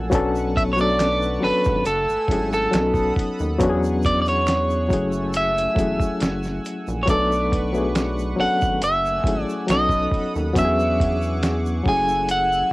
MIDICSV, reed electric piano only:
0, 0, Header, 1, 2, 480
1, 0, Start_track
1, 0, Tempo, 869565
1, 66, Time_signature, 4, 2, 24, 8
1, 7025, End_track
2, 0, Start_track
2, 0, Title_t, "Reed electric piano"
2, 0, Program_c, 0, 4
2, 0, Control_c, 0, 64, 127
2, 0, Note_on_c, 0, 54, 66
2, 0, Note_on_c, 0, 57, 64
2, 0, Note_on_c, 0, 61, 65
2, 0, Note_on_c, 0, 64, 61
2, 0, Note_on_c, 0, 66, 59
2, 0, Note_on_c, 0, 80, 76
2, 57, Note_off_c, 0, 54, 0
2, 57, Note_on_c, 0, 54, 112
2, 62, Note_on_c, 0, 59, 102
2, 69, Note_off_c, 0, 61, 0
2, 69, Note_on_c, 0, 61, 106
2, 73, Control_c, 0, 64, 0
2, 75, Note_off_c, 0, 57, 0
2, 76, Note_off_c, 0, 64, 0
2, 76, Note_off_c, 0, 80, 0
2, 77, Note_on_c, 0, 62, 108
2, 78, Note_off_c, 0, 66, 0
2, 83, Note_on_c, 0, 69, 127
2, 175, Control_c, 0, 64, 127
2, 403, Note_off_c, 0, 54, 0
2, 406, Note_off_c, 0, 59, 0
2, 409, Note_off_c, 0, 61, 0
2, 413, Note_off_c, 0, 62, 0
2, 416, Note_off_c, 0, 69, 0
2, 424, Note_on_c, 0, 54, 78
2, 432, Note_on_c, 0, 59, 65
2, 439, Note_on_c, 0, 57, 71
2, 446, Note_on_c, 0, 62, 74
2, 452, Note_on_c, 0, 69, 87
2, 759, Note_off_c, 0, 54, 0
2, 763, Note_off_c, 0, 59, 0
2, 766, Note_off_c, 0, 57, 0
2, 769, Note_off_c, 0, 62, 0
2, 772, Note_off_c, 0, 69, 0
2, 775, Note_on_c, 0, 54, 65
2, 783, Note_on_c, 0, 59, 61
2, 788, Note_on_c, 0, 61, 63
2, 795, Note_on_c, 0, 62, 66
2, 802, Note_on_c, 0, 69, 76
2, 1021, Note_off_c, 0, 54, 0
2, 1025, Note_off_c, 0, 59, 0
2, 1027, Note_off_c, 0, 61, 0
2, 1030, Note_off_c, 0, 62, 0
2, 1033, Control_c, 0, 64, 0
2, 1034, Note_off_c, 0, 69, 0
2, 1132, Control_c, 0, 64, 127
2, 1257, Note_on_c, 0, 54, 72
2, 1263, Note_on_c, 0, 57, 57
2, 1272, Note_on_c, 0, 61, 61
2, 1276, Note_on_c, 0, 64, 62
2, 1284, Note_on_c, 0, 68, 80
2, 1491, Note_off_c, 0, 54, 0
2, 1497, Note_on_c, 0, 54, 77
2, 1504, Note_off_c, 0, 61, 0
2, 1504, Note_on_c, 0, 59, 68
2, 1505, Note_off_c, 0, 57, 0
2, 1510, Note_on_c, 0, 61, 70
2, 1511, Note_off_c, 0, 64, 0
2, 1514, Control_c, 0, 64, 0
2, 1515, Note_off_c, 0, 68, 0
2, 1518, Note_on_c, 0, 63, 70
2, 1524, Note_on_c, 0, 68, 66
2, 1553, Note_off_c, 0, 68, 0
2, 1560, Note_on_c, 0, 69, 81
2, 1616, Control_c, 0, 64, 127
2, 1951, Note_off_c, 0, 54, 0
2, 1955, Note_off_c, 0, 59, 0
2, 1958, Note_off_c, 0, 61, 0
2, 1962, Note_off_c, 0, 63, 0
2, 1977, Note_on_c, 0, 54, 117
2, 1981, Note_on_c, 0, 59, 105
2, 1983, Note_off_c, 0, 69, 0
2, 1989, Note_on_c, 0, 61, 97
2, 1993, Control_c, 0, 64, 0
2, 1997, Note_on_c, 0, 62, 104
2, 2003, Note_on_c, 0, 66, 98
2, 2033, Note_off_c, 0, 66, 0
2, 2038, Note_on_c, 0, 68, 127
2, 2092, Control_c, 0, 64, 127
2, 2656, Note_off_c, 0, 54, 0
2, 2658, Note_off_c, 0, 59, 0
2, 2662, Note_off_c, 0, 61, 0
2, 2666, Note_off_c, 0, 62, 0
2, 2687, Note_off_c, 0, 68, 0
2, 2696, Note_on_c, 0, 54, 76
2, 2702, Note_on_c, 0, 56, 53
2, 2709, Note_on_c, 0, 61, 62
2, 2714, Control_c, 0, 64, 0
2, 2717, Note_on_c, 0, 64, 65
2, 2723, Note_on_c, 0, 68, 82
2, 2739, Note_on_c, 0, 57, 68
2, 2742, Note_off_c, 0, 56, 0
2, 2823, Control_c, 0, 64, 127
2, 3151, Note_off_c, 0, 54, 0
2, 3157, Note_off_c, 0, 61, 0
2, 3161, Note_off_c, 0, 64, 0
2, 3164, Note_off_c, 0, 68, 0
2, 3172, Note_off_c, 0, 57, 0
2, 3173, Note_on_c, 0, 54, 65
2, 3180, Note_on_c, 0, 57, 66
2, 3187, Note_on_c, 0, 61, 62
2, 3194, Note_on_c, 0, 64, 60
2, 3201, Note_on_c, 0, 68, 73
2, 3854, Note_off_c, 0, 54, 0
2, 3857, Note_off_c, 0, 57, 0
2, 3861, Note_off_c, 0, 61, 0
2, 3864, Note_off_c, 0, 64, 0
2, 3868, Note_off_c, 0, 68, 0
2, 3896, Note_on_c, 0, 54, 86
2, 3903, Note_on_c, 0, 59, 89
2, 3909, Note_on_c, 0, 57, 81
2, 3913, Control_c, 0, 64, 0
2, 3915, Note_on_c, 0, 62, 86
2, 3923, Note_on_c, 0, 69, 103
2, 4003, Control_c, 0, 64, 127
2, 4243, Note_off_c, 0, 54, 0
2, 4246, Note_off_c, 0, 59, 0
2, 4249, Note_off_c, 0, 57, 0
2, 4252, Note_off_c, 0, 62, 0
2, 4256, Note_off_c, 0, 69, 0
2, 4265, Note_on_c, 0, 54, 76
2, 4273, Note_on_c, 0, 59, 69
2, 4278, Note_on_c, 0, 57, 68
2, 4285, Note_on_c, 0, 62, 70
2, 4293, Note_on_c, 0, 68, 84
2, 4599, Note_off_c, 0, 54, 0
2, 4603, Note_off_c, 0, 59, 0
2, 4606, Note_off_c, 0, 57, 0
2, 4609, Note_off_c, 0, 62, 0
2, 4613, Note_off_c, 0, 68, 0
2, 4617, Note_on_c, 0, 54, 76
2, 4624, Note_on_c, 0, 59, 58
2, 4629, Note_on_c, 0, 61, 64
2, 4636, Note_on_c, 0, 62, 57
2, 4644, Note_on_c, 0, 69, 80
2, 4862, Note_off_c, 0, 54, 0
2, 4865, Note_off_c, 0, 59, 0
2, 4868, Note_off_c, 0, 61, 0
2, 4871, Note_off_c, 0, 62, 0
2, 4874, Control_c, 0, 64, 0
2, 4875, Note_off_c, 0, 69, 0
2, 4969, Control_c, 0, 64, 127
2, 5098, Note_on_c, 0, 54, 67
2, 5104, Note_on_c, 0, 57, 60
2, 5112, Note_on_c, 0, 61, 64
2, 5119, Note_on_c, 0, 64, 59
2, 5126, Note_on_c, 0, 68, 74
2, 5334, Note_off_c, 0, 54, 0
2, 5340, Note_on_c, 0, 54, 75
2, 5345, Note_off_c, 0, 57, 0
2, 5347, Note_off_c, 0, 61, 0
2, 5347, Note_on_c, 0, 59, 68
2, 5352, Note_off_c, 0, 64, 0
2, 5354, Control_c, 0, 64, 0
2, 5354, Note_on_c, 0, 61, 70
2, 5356, Note_off_c, 0, 68, 0
2, 5360, Note_on_c, 0, 63, 70
2, 5368, Note_on_c, 0, 69, 79
2, 5451, Control_c, 0, 64, 127
2, 5793, Note_off_c, 0, 54, 0
2, 5796, Note_off_c, 0, 59, 0
2, 5800, Note_off_c, 0, 61, 0
2, 5803, Note_off_c, 0, 63, 0
2, 5807, Note_off_c, 0, 69, 0
2, 5813, Note_on_c, 0, 54, 87
2, 5820, Note_on_c, 0, 59, 86
2, 5826, Note_on_c, 0, 61, 81
2, 5833, Control_c, 0, 64, 0
2, 5835, Note_on_c, 0, 62, 77
2, 5840, Note_on_c, 0, 66, 82
2, 5871, Note_off_c, 0, 66, 0
2, 5877, Note_on_c, 0, 68, 100
2, 5939, Control_c, 0, 64, 127
2, 6494, Note_off_c, 0, 54, 0
2, 6497, Note_off_c, 0, 59, 0
2, 6501, Note_off_c, 0, 61, 0
2, 6505, Note_off_c, 0, 62, 0
2, 6526, Note_off_c, 0, 68, 0
2, 6533, Note_on_c, 0, 54, 71
2, 6541, Note_on_c, 0, 57, 74
2, 6548, Note_on_c, 0, 61, 66
2, 6553, Control_c, 0, 64, 0
2, 6553, Note_on_c, 0, 64, 63
2, 6560, Note_on_c, 0, 68, 87
2, 6655, Control_c, 0, 64, 127
2, 6989, Note_off_c, 0, 54, 0
2, 6993, Note_off_c, 0, 57, 0
2, 6997, Note_off_c, 0, 61, 0
2, 6999, Note_off_c, 0, 64, 0
2, 7003, Note_off_c, 0, 68, 0
2, 7025, End_track
0, 0, End_of_file